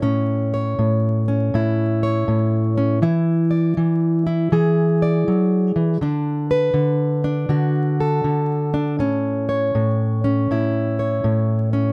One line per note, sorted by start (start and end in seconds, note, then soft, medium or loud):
0.00 0.77 A2 medium
0.00 1.27 C#4 medium
0.00 1.55 E4 medium
0.54 2.02 C#5 medium
0.79 1.53 A2 medium
1.28 2.76 C#4 soft
1.54 2.27 A2 medium
1.54 3.02 E4 medium
2.03 3.00 C#5 medium
2.28 3.03 A2 medium
2.78 3.00 C#4 medium
3.02 3.76 E3 medium
3.02 4.25 E4 medium
3.51 5.00 D5 medium
3.77 4.51 E3 medium
4.27 5.98 E4 soft
4.52 5.27 E3 medium
4.52 5.98 G#4 medium
5.02 5.99 D5 medium
5.28 5.75 F#3 medium
5.76 6.01 E3 medium
6.01 6.73 D3 medium
6.01 7.23 D4 medium
6.51 7.99 B4 medium
6.74 7.48 D3 medium
7.24 8.73 D4 medium
7.49 8.23 D3 medium
7.49 8.96 F#4 medium
8.00 9.48 A4 medium
8.24 8.99 D3 medium
8.74 8.97 D4 medium
8.99 9.74 A2 medium
8.99 10.23 C#4 medium
9.49 10.98 C#5 medium
9.75 10.49 A2 medium
10.24 11.72 C#4 medium
10.51 11.23 A2 medium
10.51 11.93 E4 medium
10.99 11.93 C#5 medium
11.24 11.93 A2 medium
11.73 11.93 C#4 medium